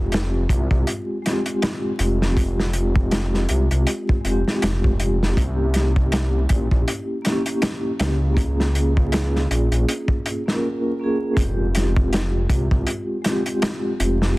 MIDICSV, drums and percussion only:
0, 0, Header, 1, 2, 480
1, 0, Start_track
1, 0, Key_signature, -4, "minor"
1, 0, Tempo, 750000
1, 1521, Time_signature, 4, 2, 24, 8
1, 9204, End_track
2, 0, Start_track
2, 0, Title_t, "Drums"
2, 77, Note_on_c, 9, 42, 70
2, 92, Note_on_c, 9, 38, 107
2, 141, Note_off_c, 9, 42, 0
2, 156, Note_off_c, 9, 38, 0
2, 316, Note_on_c, 9, 36, 85
2, 321, Note_on_c, 9, 42, 64
2, 380, Note_off_c, 9, 36, 0
2, 385, Note_off_c, 9, 42, 0
2, 453, Note_on_c, 9, 36, 93
2, 517, Note_off_c, 9, 36, 0
2, 557, Note_on_c, 9, 42, 80
2, 621, Note_off_c, 9, 42, 0
2, 805, Note_on_c, 9, 42, 55
2, 811, Note_on_c, 9, 38, 37
2, 869, Note_off_c, 9, 42, 0
2, 875, Note_off_c, 9, 38, 0
2, 932, Note_on_c, 9, 42, 45
2, 996, Note_off_c, 9, 42, 0
2, 1039, Note_on_c, 9, 42, 80
2, 1045, Note_on_c, 9, 38, 113
2, 1103, Note_off_c, 9, 42, 0
2, 1109, Note_off_c, 9, 38, 0
2, 1274, Note_on_c, 9, 42, 68
2, 1338, Note_off_c, 9, 42, 0
2, 1421, Note_on_c, 9, 38, 44
2, 1485, Note_off_c, 9, 38, 0
2, 1515, Note_on_c, 9, 36, 91
2, 1519, Note_on_c, 9, 42, 73
2, 1579, Note_off_c, 9, 36, 0
2, 1583, Note_off_c, 9, 42, 0
2, 1661, Note_on_c, 9, 38, 57
2, 1725, Note_off_c, 9, 38, 0
2, 1750, Note_on_c, 9, 42, 68
2, 1814, Note_off_c, 9, 42, 0
2, 1891, Note_on_c, 9, 36, 95
2, 1955, Note_off_c, 9, 36, 0
2, 1993, Note_on_c, 9, 42, 80
2, 1999, Note_on_c, 9, 38, 102
2, 2057, Note_off_c, 9, 42, 0
2, 2063, Note_off_c, 9, 38, 0
2, 2140, Note_on_c, 9, 38, 35
2, 2204, Note_off_c, 9, 38, 0
2, 2231, Note_on_c, 9, 42, 66
2, 2295, Note_off_c, 9, 42, 0
2, 2374, Note_on_c, 9, 42, 38
2, 2438, Note_off_c, 9, 42, 0
2, 2475, Note_on_c, 9, 42, 73
2, 2539, Note_off_c, 9, 42, 0
2, 2619, Note_on_c, 9, 36, 80
2, 2683, Note_off_c, 9, 36, 0
2, 2718, Note_on_c, 9, 42, 54
2, 2782, Note_off_c, 9, 42, 0
2, 2864, Note_on_c, 9, 38, 42
2, 2928, Note_off_c, 9, 38, 0
2, 2958, Note_on_c, 9, 42, 86
2, 2968, Note_on_c, 9, 38, 112
2, 3022, Note_off_c, 9, 42, 0
2, 3032, Note_off_c, 9, 38, 0
2, 3099, Note_on_c, 9, 36, 89
2, 3163, Note_off_c, 9, 36, 0
2, 3197, Note_on_c, 9, 42, 61
2, 3261, Note_off_c, 9, 42, 0
2, 3345, Note_on_c, 9, 38, 45
2, 3409, Note_off_c, 9, 38, 0
2, 3437, Note_on_c, 9, 36, 90
2, 3441, Note_on_c, 9, 42, 73
2, 3501, Note_off_c, 9, 36, 0
2, 3505, Note_off_c, 9, 42, 0
2, 3673, Note_on_c, 9, 42, 65
2, 3687, Note_on_c, 9, 38, 41
2, 3737, Note_off_c, 9, 42, 0
2, 3751, Note_off_c, 9, 38, 0
2, 3816, Note_on_c, 9, 36, 88
2, 3880, Note_off_c, 9, 36, 0
2, 3917, Note_on_c, 9, 42, 90
2, 3926, Note_on_c, 9, 38, 118
2, 3981, Note_off_c, 9, 42, 0
2, 3990, Note_off_c, 9, 38, 0
2, 4154, Note_on_c, 9, 42, 69
2, 4160, Note_on_c, 9, 36, 79
2, 4218, Note_off_c, 9, 42, 0
2, 4224, Note_off_c, 9, 36, 0
2, 4296, Note_on_c, 9, 36, 84
2, 4360, Note_off_c, 9, 36, 0
2, 4401, Note_on_c, 9, 42, 78
2, 4465, Note_off_c, 9, 42, 0
2, 4639, Note_on_c, 9, 42, 65
2, 4649, Note_on_c, 9, 38, 45
2, 4703, Note_off_c, 9, 42, 0
2, 4713, Note_off_c, 9, 38, 0
2, 4773, Note_on_c, 9, 42, 48
2, 4837, Note_off_c, 9, 42, 0
2, 4876, Note_on_c, 9, 42, 77
2, 4883, Note_on_c, 9, 38, 102
2, 4940, Note_off_c, 9, 42, 0
2, 4947, Note_off_c, 9, 38, 0
2, 5117, Note_on_c, 9, 42, 75
2, 5126, Note_on_c, 9, 38, 106
2, 5181, Note_off_c, 9, 42, 0
2, 5190, Note_off_c, 9, 38, 0
2, 5355, Note_on_c, 9, 36, 88
2, 5360, Note_on_c, 9, 42, 76
2, 5419, Note_off_c, 9, 36, 0
2, 5424, Note_off_c, 9, 42, 0
2, 5504, Note_on_c, 9, 38, 53
2, 5568, Note_off_c, 9, 38, 0
2, 5601, Note_on_c, 9, 42, 60
2, 5665, Note_off_c, 9, 42, 0
2, 5740, Note_on_c, 9, 36, 85
2, 5804, Note_off_c, 9, 36, 0
2, 5838, Note_on_c, 9, 42, 91
2, 5850, Note_on_c, 9, 38, 116
2, 5902, Note_off_c, 9, 42, 0
2, 5914, Note_off_c, 9, 38, 0
2, 5990, Note_on_c, 9, 38, 32
2, 6054, Note_off_c, 9, 38, 0
2, 6086, Note_on_c, 9, 42, 70
2, 6150, Note_off_c, 9, 42, 0
2, 6220, Note_on_c, 9, 42, 42
2, 6284, Note_off_c, 9, 42, 0
2, 6327, Note_on_c, 9, 42, 83
2, 6391, Note_off_c, 9, 42, 0
2, 6452, Note_on_c, 9, 36, 100
2, 6516, Note_off_c, 9, 36, 0
2, 6564, Note_on_c, 9, 42, 71
2, 6628, Note_off_c, 9, 42, 0
2, 6708, Note_on_c, 9, 38, 46
2, 6772, Note_off_c, 9, 38, 0
2, 7275, Note_on_c, 9, 36, 97
2, 7280, Note_on_c, 9, 42, 77
2, 7339, Note_off_c, 9, 36, 0
2, 7344, Note_off_c, 9, 42, 0
2, 7518, Note_on_c, 9, 42, 69
2, 7533, Note_on_c, 9, 38, 42
2, 7582, Note_off_c, 9, 42, 0
2, 7597, Note_off_c, 9, 38, 0
2, 7657, Note_on_c, 9, 36, 96
2, 7721, Note_off_c, 9, 36, 0
2, 7761, Note_on_c, 9, 42, 81
2, 7770, Note_on_c, 9, 38, 113
2, 7825, Note_off_c, 9, 42, 0
2, 7834, Note_off_c, 9, 38, 0
2, 7997, Note_on_c, 9, 36, 83
2, 7998, Note_on_c, 9, 42, 63
2, 8061, Note_off_c, 9, 36, 0
2, 8062, Note_off_c, 9, 42, 0
2, 8136, Note_on_c, 9, 36, 90
2, 8200, Note_off_c, 9, 36, 0
2, 8234, Note_on_c, 9, 42, 83
2, 8298, Note_off_c, 9, 42, 0
2, 8477, Note_on_c, 9, 42, 67
2, 8484, Note_on_c, 9, 38, 45
2, 8541, Note_off_c, 9, 42, 0
2, 8548, Note_off_c, 9, 38, 0
2, 8613, Note_on_c, 9, 42, 41
2, 8677, Note_off_c, 9, 42, 0
2, 8717, Note_on_c, 9, 42, 88
2, 8722, Note_on_c, 9, 38, 120
2, 8781, Note_off_c, 9, 42, 0
2, 8786, Note_off_c, 9, 38, 0
2, 8959, Note_on_c, 9, 42, 68
2, 9023, Note_off_c, 9, 42, 0
2, 9099, Note_on_c, 9, 38, 52
2, 9163, Note_off_c, 9, 38, 0
2, 9204, End_track
0, 0, End_of_file